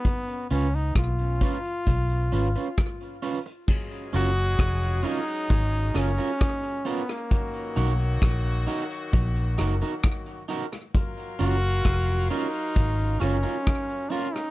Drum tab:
CC |----------------|x---------------|----------------|----------------|
HH |xxxxxxxxxxxxxxox|-xxxxxxxxxxxxxxx|xxxxxxxxxxxxxxxx|xxxxxxxxxxxxxxxx|
SD |----r-------r---|----r-----r-r--r|----r-----r-r--r|----r-----r-r--r|
BD |o---o-o-o---o---|o---o---o---o---|o---o---o---o---|o---o---o---o---|